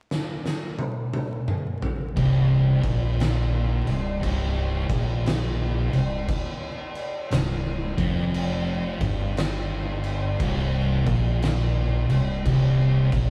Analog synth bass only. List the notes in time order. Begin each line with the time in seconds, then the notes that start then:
2.17 C1
2.83 A#1
3.87 C1
4.23 C1
4.90 A#1
5.93 C1
7.32 C1
7.98 F1
9.01 G1
10.40 C1
11.07 A#1
12.10 C1
12.46 C1
13.12 A#1